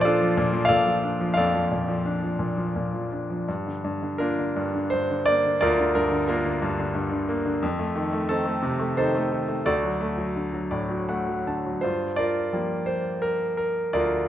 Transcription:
0.00 0.37 A#2 medium
0.00 0.21 F3 medium
0.00 0.05 F4 medium
0.00 0.05 A4 medium
0.00 3.50 C5 medium
0.00 0.69 D5 medium
0.05 1.02 D4 medium
0.05 0.99 F4 medium
0.05 0.67 A4 medium
0.21 0.52 F3 medium
0.37 0.68 A#2 medium
0.53 0.85 F3 medium
0.65 1.36 A4 medium
0.65 1.35 D5 medium
0.65 1.32 F5 loud
0.70 1.70 A#2 medium
0.87 1.19 F3 soft
1.03 2.04 D4 soft
1.21 1.53 F3 soft
1.34 3.45 F2 medium
1.34 3.09 A4 medium
1.34 3.09 D5 medium
1.34 3.07 F5 medium
1.55 1.87 F3 soft
1.72 2.38 A#2 soft
1.88 2.21 F3 soft
2.06 3.11 D4 soft
2.22 2.56 F3 soft
2.39 2.74 A#2 soft
2.57 2.92 F3 soft
2.76 3.46 A#2 soft
2.94 3.29 F3 soft
3.12 3.47 D4 soft
3.30 3.48 F3 soft
3.48 3.83 G2 medium
3.66 4.01 D3 soft
3.84 4.55 G2 soft
4.02 4.37 D3 soft
4.18 5.27 A#3 soft
4.18 5.23 D4 medium
4.18 5.24 F4 soft
4.18 4.88 A#4 medium
4.39 4.73 D3 soft
4.56 4.92 G2 medium
4.75 5.09 D3 soft
4.90 5.94 G2 soft
4.90 5.27 C5 medium
5.10 5.43 D3 soft
5.26 6.27 A#3 soft
5.26 5.58 D5 medium
5.45 5.78 D3 soft
5.61 7.58 D2 medium
5.61 6.27 F4 medium
5.61 5.93 A#4 medium
5.61 5.96 D5 medium
5.79 6.10 D3 soft
5.95 6.60 G2 medium
5.95 6.26 A#4 medium
6.12 6.44 D3 medium
6.27 7.27 A#3 medium
6.27 7.25 D4 medium
6.27 7.25 F4 medium
6.27 7.24 A#4 medium
6.46 6.78 D3 soft
6.62 6.93 G2 medium
6.79 7.10 D3 medium
6.95 7.60 G2 medium
7.12 7.44 D3 medium
7.29 7.61 A#3 medium
7.46 7.62 D3 medium
7.62 9.63 F2 medium
7.79 8.11 A3 medium
7.96 8.27 D#3 medium
8.13 8.44 A3 soft
8.29 8.96 D#3 medium
8.29 9.29 C4 soft
8.29 8.97 D#4 soft
8.29 8.97 A4 medium
8.45 8.78 A3 medium
8.63 9.63 C3 medium
8.79 9.13 A3 soft
8.97 9.30 D#3 soft
8.97 9.63 D#4 medium
8.97 9.63 A4 medium
8.97 9.69 C5 medium
9.15 9.47 A3 medium
9.32 9.65 D#3 soft
9.48 9.66 A3 soft
9.65 11.79 D2 medium
9.65 11.05 F#4 medium
9.65 11.05 A4 medium
9.65 10.69 D5 medium
9.83 10.16 F#3 soft
10.01 11.07 A3 soft
10.18 10.52 F#3 soft
10.36 11.45 D3 soft
10.53 10.88 F#3 soft
10.71 11.80 A2 soft
10.71 11.06 D5 medium
10.90 11.27 F#3 soft
11.09 11.81 A3 soft
11.09 11.44 F#5 soft
11.28 11.65 F#3 soft
11.47 11.82 D3 soft
11.47 11.81 A5 soft
11.66 11.83 F#3 soft
11.81 13.90 G2 soft
11.81 12.17 F4 soft
11.81 12.19 C5 medium
12.16 13.20 F4 medium
12.16 13.20 A#4 medium
12.16 12.83 D5 medium
12.53 14.28 F3 soft
12.53 14.28 G3 soft
12.53 14.28 A#3 soft
12.86 13.24 C5 medium
13.22 13.56 A#4 medium
13.57 13.93 A#4 medium
13.93 14.28 D2 medium
13.93 14.28 F4 medium
13.93 14.28 A#4 medium
13.93 14.28 D5 medium

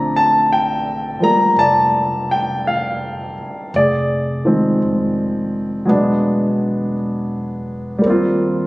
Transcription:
0.00 1.17 A#1 medium
0.00 3.70 D3 soft
0.00 1.19 F3 soft
0.00 3.74 A3 soft
0.00 3.76 C4 soft
0.00 1.55 D5 medium
0.00 0.11 A#5 medium
0.16 0.48 A5 medium
0.53 1.18 G5 medium
1.20 3.72 F3 soft
1.20 3.73 G3 soft
1.20 3.74 A#3 soft
1.20 1.59 A#5 medium
1.20 muted upright bass stroke soft
1.56 3.33 F1 medium
1.56 3.71 D5 medium
1.56 2.32 A5 medium
2.31 2.63 G5 medium
2.67 3.70 F5 medium
3.38 muted upright bass stroke soft
3.74 4.77 F1 medium
3.74 6.93 D5 medium
3.78 6.94 G#4 soft
4.45 5.88 D#3 soft
4.45 5.88 F3 soft
4.45 5.86 G#3 soft
4.45 5.89 C4 medium
4.82 5.85 F1 medium
5.85 7.99 E1 medium
5.85 8.01 F#3 medium
5.85 8.02 G#3 medium
5.85 8.03 B3 soft
5.90 8.03 D4 medium
7.98 8.67 G3 medium
7.98 8.67 A#3 soft
8.04 8.67 D#2 medium
8.04 8.67 C4 soft
8.09 8.67 F4 medium

